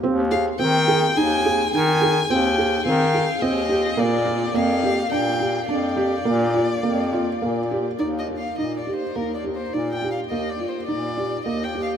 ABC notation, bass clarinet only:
X:1
M:7/4
L:1/8
Q:1/4=105
K:Eb
V:1 name="Bass clarinet" clef=bass
E,,2 E,2 E,,2 E,2 E,,2 E,2 E,,2 | B,,2 F,,2 B,,2 F,,2 B,,2 F,,2 B,,2 | E,,2 B,, z E,,2 B,,2 E,, z B,,2 E,,2 |]